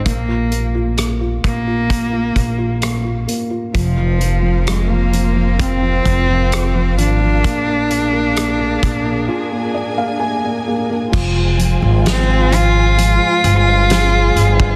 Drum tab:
CC |----------------|----------------|----------------|x---------------|
HH |x-x-x-x-x-x-x-x-|x-x-x-x-x-x-x-x-|x-x-x-x---------|--x-x-x-x-x-x-x-|
SD |----r-------r---|----r-------r---|----r-----------|----o-------o---|
BD |o-----o-o-o-----|o-------o-o-----|o-----o---------|o--------------o|